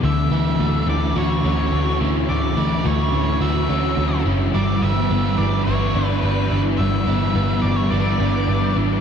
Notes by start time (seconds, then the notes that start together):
0.03 D2 D3 E3 E5
0.31 D2 E3 E4
0.59 D2 A3 F#4
0.87 D2 D3 C#4 E4 D5
1.16 D2 E3 F#4 C#5
1.44 D2 A3 C#4 C#5
1.72 D2 D3 F#4
2.01 D2 E3 C#4 E4
2.28 D2 D3 E3 D5
2.57 D2 E3 E4
2.85 D2 A3 F#4 C#5
3.13 D2 D3 C#4 E4
3.41 D2 E3 F#4 E5
3.69 D2 A3 C#4 C#5
3.97 D2 D3 C#4 F#4
4.25 F#1 E3 C#4 E4
4.54 G1 E3 G3 D5
4.82 G1 E3 B3 E4 E5
5.10 G1 B3
5.38 G1 G3 D4 E4 D5
5.64 G1 E3 B3 B4 C#5
5.95 G1 B3 D4 D5
6.06 B4
6.22 G1 G3 D4 B4
6.51 G1 E3 D4 E4
6.78 G1 E3 G3 E5
7.07 G1 E3 B3 E4
7.35 G1 B3
7.62 G1 G3 D4 E4 D5
7.76 C#5
7.90 G1 E3 B3 B4 D5
8.20 G1 B3 D4 D5
8.48 G1 G3 D4 B4
8.76 G#1 E3 D4 E4